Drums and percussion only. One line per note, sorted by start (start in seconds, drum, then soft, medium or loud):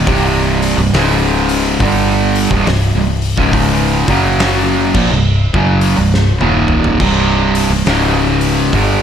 0.07 kick loud
0.07 open hi-hat medium
0.62 open hi-hat medium
0.94 snare loud
0.94 open hi-hat medium
1.49 open hi-hat medium
1.80 kick loud
1.80 open hi-hat medium
2.35 open hi-hat medium
2.51 kick loud
2.51 snare soft
2.66 snare loud
2.66 open hi-hat medium
3.22 open hi-hat medium
3.38 kick loud
3.53 kick loud
3.53 open hi-hat medium
4.08 kick loud
4.08 open hi-hat medium
4.39 snare loud
4.39 open hi-hat medium
4.94 kick loud
4.94 crash loud
5.54 kick loud
5.81 open hi-hat medium
6.14 snare medium
6.41 high tom medium
6.68 mid tom loud
6.84 floor tom medium
7.00 kick loud
7.00 crash loud
7.55 open hi-hat medium
7.86 snare loud
7.86 open hi-hat medium
8.41 open hi-hat medium
8.73 kick medium
8.73 open hi-hat medium